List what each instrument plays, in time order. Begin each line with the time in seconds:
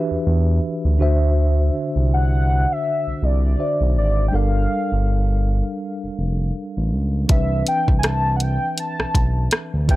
Already playing: tine electric piano E3 D4 F#4 G4 B4 E5
0.11 analog synth bass E2
0.27 analog synth bass E2
0.85 analog synth bass D2
0.98 analog synth bass D2, tine electric piano D3 D4 F#4 C5
1.02 tine electric piano E5
1.96 analog synth bass C2
2.14 soft synth lead F#5
2.72 soft synth lead E5
3.07 analog synth bass C2
3.22 analog synth bass C2, soft synth lead D5
3.58 tine electric piano D3 D4 F#4 C5 E5
3.81 analog synth bass B1
3.96 analog synth bass G#1, soft synth lead D5
4.28 tine electric piano G3 D4, soft synth lead G5
4.33 analog synth bass G1, tine electric piano A4 A#4 F5, soft synth lead F5
4.92 analog synth bass G1
6.03 analog synth bass F1
6.19 analog synth bass F1
6.77 analog synth bass A1
6.92 analog synth bass C#2
7.27 analog synth bass C2, tine electric piano E3 C4 D4 B4, soft synth lead E5, kick, closed hi-hat
7.31 tine electric piano E5
7.67 soft synth lead G5, closed hi-hat
7.88 analog synth bass C2, kick
7.99 soft synth lead G#5
8.03 soft synth lead A5, cross-stick, closed hi-hat
8.36 soft synth lead F#5, closed hi-hat
8.42 soft synth lead G5
8.78 soft synth lead A5, closed hi-hat
8.99 analog synth bass B1, cross-stick
9.15 analog synth bass B1, kick, closed hi-hat
9.51 cross-stick, closed hi-hat
9.74 analog synth bass D2
9.87 analog synth bass E2, tine electric piano E3 D4 G4 B4, soft synth lead G5, kick, closed hi-hat
9.91 tine electric piano E5